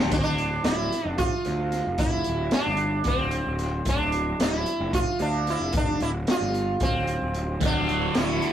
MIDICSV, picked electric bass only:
0, 0, Header, 1, 2, 480
1, 0, Start_track
1, 0, Key_signature, -1, "minor"
1, 0, Tempo, 536673
1, 96, Time_signature, 7, 3, 24, 8
1, 7627, End_track
2, 0, Start_track
2, 0, Title_t, "Picked electric bass"
2, 0, Program_c, 0, 34
2, 106, Note_on_c, 0, 26, 90
2, 512, Note_off_c, 0, 26, 0
2, 572, Note_on_c, 0, 26, 101
2, 778, Note_off_c, 0, 26, 0
2, 942, Note_on_c, 0, 29, 80
2, 1144, Note_off_c, 0, 29, 0
2, 1304, Note_on_c, 0, 38, 74
2, 1607, Note_off_c, 0, 38, 0
2, 1671, Note_on_c, 0, 29, 70
2, 1971, Note_off_c, 0, 29, 0
2, 2032, Note_on_c, 0, 26, 85
2, 2229, Note_off_c, 0, 26, 0
2, 2382, Note_on_c, 0, 31, 102
2, 2686, Note_off_c, 0, 31, 0
2, 2733, Note_on_c, 0, 26, 88
2, 3041, Note_off_c, 0, 26, 0
2, 3099, Note_on_c, 0, 26, 93
2, 3404, Note_off_c, 0, 26, 0
2, 3455, Note_on_c, 0, 26, 87
2, 3865, Note_off_c, 0, 26, 0
2, 3933, Note_on_c, 0, 26, 91
2, 4139, Note_off_c, 0, 26, 0
2, 4296, Note_on_c, 0, 29, 89
2, 4500, Note_off_c, 0, 29, 0
2, 4651, Note_on_c, 0, 38, 82
2, 4960, Note_off_c, 0, 38, 0
2, 5009, Note_on_c, 0, 29, 72
2, 5319, Note_off_c, 0, 29, 0
2, 5369, Note_on_c, 0, 26, 88
2, 5576, Note_off_c, 0, 26, 0
2, 5731, Note_on_c, 0, 31, 86
2, 6040, Note_off_c, 0, 31, 0
2, 6088, Note_on_c, 0, 26, 81
2, 6398, Note_off_c, 0, 26, 0
2, 6456, Note_on_c, 0, 26, 93
2, 6763, Note_off_c, 0, 26, 0
2, 6809, Note_on_c, 0, 26, 86
2, 7222, Note_off_c, 0, 26, 0
2, 7292, Note_on_c, 0, 26, 86
2, 7498, Note_off_c, 0, 26, 0
2, 7627, End_track
0, 0, End_of_file